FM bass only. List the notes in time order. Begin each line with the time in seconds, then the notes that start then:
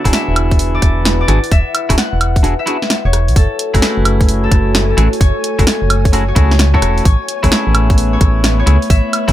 0.05 E1
0.28 E1
0.82 E1
1.28 G#1
1.52 E1
1.90 E1
2.13 E1
2.44 E1
3.05 E1
3.28 B1
3.36 F#1
3.74 F#1
3.98 F#1
4.51 F#1
4.98 A1
5.21 F#1
5.59 F#1
5.82 F#1
6.36 C#2
6.82 E1
7.05 A1
7.44 A1
7.67 A1
8.21 A1
8.67 C#2
8.90 A1
9.28 A1